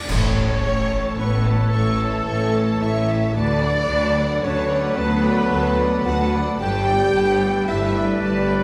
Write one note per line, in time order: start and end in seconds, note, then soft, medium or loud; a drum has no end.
0.00 0.11 D5 medium
0.08 0.58 A1 loud
0.08 0.58 A2 medium
0.08 3.32 E3 medium
0.08 3.32 A3 medium
0.08 1.18 C#4 loud
0.08 3.18 A4 medium
0.08 0.36 A4 medium
0.08 1.20 C#5 loud
0.08 1.19 C#5 loud
0.08 0.36 C#5 medium
0.08 0.36 C#6 medium
0.08 concert bass drum medium
0.08 crash medium
0.08 sub drop medium
0.37 0.64 A4 medium
0.37 0.64 C#5 medium
0.37 0.64 A5 medium
0.64 1.13 A1 medium
0.64 1.13 A2 medium
0.64 0.92 A4 medium
0.64 0.92 C#5 medium
0.64 0.91 C#6 medium
0.92 1.19 A4 medium
0.92 1.19 C#5 medium
0.92 1.19 A5 medium
1.18 1.67 A1 medium
1.18 1.67 A2 loud
1.18 1.56 B3 loud
1.18 1.45 A4 medium
1.18 1.72 B4 medium
1.18 1.73 B4 medium
1.18 1.45 C#5 medium
1.18 1.44 C#6 medium
1.46 1.73 A4 medium
1.46 1.73 C#5 medium
1.46 1.73 A5 medium
1.72 2.21 A1 medium
1.72 2.21 A2 loud
1.72 2.79 A3 loud
1.72 2.82 A4 loud
1.72 2.79 A4 loud
1.72 1.99 A4 medium
1.72 1.99 C#5 medium
1.72 2.00 C#6 medium
2.00 2.26 A4 medium
2.00 2.26 C#5 medium
2.00 2.27 A5 medium
2.27 2.75 A1 medium
2.27 2.75 A2 medium
2.27 2.53 A4 medium
2.27 2.52 C#5 medium
2.27 2.52 C#6 medium
2.55 2.81 A4 medium
2.55 2.80 C#5 medium
2.55 2.82 A5 medium
2.80 3.29 A1 medium
2.80 3.29 A2 loud
2.80 3.35 E4 loud
2.80 3.07 A4 medium
2.80 3.07 C#5 medium
2.80 3.34 E5 loud
2.80 3.36 E5 loud
2.80 3.09 C#6 medium
3.09 3.36 A4 medium
3.09 3.36 C#5 medium
3.09 3.34 A5 medium
3.35 3.83 D2 loud
3.35 6.42 F#3 medium
3.35 6.42 A3 medium
3.35 4.41 D4 loud
3.35 3.60 F#4 medium
3.35 3.60 B4 medium
3.35 6.56 B4 medium
3.35 4.45 D5 loud
3.35 4.44 D5 loud
3.35 3.61 A5 medium
3.62 3.89 A4 medium
3.62 3.90 D5 medium
3.62 3.89 F#5 medium
3.89 4.37 D2 medium
3.89 4.37 D2 loud
3.89 4.17 F#4 medium
3.89 4.17 B4 medium
3.89 4.17 A5 medium
4.16 4.44 A4 medium
4.16 4.44 D5 medium
4.16 4.43 F#5 medium
4.42 4.91 D2 medium
4.42 4.92 D2 loud
4.42 4.98 C#4 loud
4.42 4.69 F#4 medium
4.42 4.69 B4 medium
4.42 4.98 C#5 loud
4.42 4.73 C#5 loud
4.42 4.68 A5 medium
4.69 4.98 A4 medium
4.69 4.98 D5 medium
4.69 4.97 F#5 medium
4.97 5.45 D2 loud
4.97 5.46 D2 loud
4.97 6.05 B3 loud
4.97 5.25 F#4 medium
4.97 5.76 B4 loud
4.97 5.25 B4 loud
4.97 6.06 B4 loud
4.97 5.25 A5 medium
5.23 5.52 A4 medium
5.23 5.52 D5 medium
5.23 5.51 F#5 medium
5.52 5.99 D2 loud
5.52 6.00 D2 loud
5.52 5.78 F#4 medium
5.52 5.78 B4 medium
5.52 5.77 A5 medium
5.80 6.06 A4 medium
5.80 6.06 D5 medium
5.80 6.06 F#5 medium
6.06 6.53 D2 loud
6.06 6.54 D2 loud
6.06 6.33 F#4 loud
6.06 6.34 F#4 medium
6.06 6.34 B4 loud
6.06 6.31 F#5 loud
6.06 6.32 F#5 medium
6.06 6.33 A5 medium
6.33 6.60 A4 medium
6.33 6.60 D5 medium
6.33 6.60 F#5 medium
6.59 7.08 G1 loud
6.59 7.08 G2 loud
6.59 8.63 G3 loud
6.59 8.63 A3 medium
6.59 7.63 G4 loud
6.59 6.86 G4 medium
6.59 8.63 B4 loud
6.59 6.85 B4 medium
6.59 7.63 G5 loud
6.59 7.69 G5 loud
6.59 6.85 A5 medium
6.87 7.15 A4 medium
6.87 7.15 D5 medium
6.87 7.14 G5 medium
7.14 7.61 G1 medium
7.14 7.62 G2 loud
7.14 7.41 G4 medium
7.14 7.41 B4 medium
7.14 7.41 A5 medium
7.41 7.68 A4 medium
7.41 7.68 D5 medium
7.41 7.68 G5 medium
7.67 8.15 G1 loud
7.67 8.15 G2 medium
7.67 8.22 E4 loud
7.67 7.94 G4 medium
7.67 7.94 B4 medium
7.67 8.22 E5 loud
7.67 7.93 A5 medium
7.94 8.22 A4 medium
7.94 8.22 D5 medium
7.94 8.22 G5 medium
8.21 8.63 G1 medium
8.21 8.63 G2 medium
8.21 8.63 D4 loud
8.21 8.50 G4 medium
8.21 8.49 B4 medium
8.21 8.63 D5 medium
8.21 8.49 A5 medium
8.49 8.63 A4 medium
8.49 8.63 D5 medium
8.49 8.63 G5 medium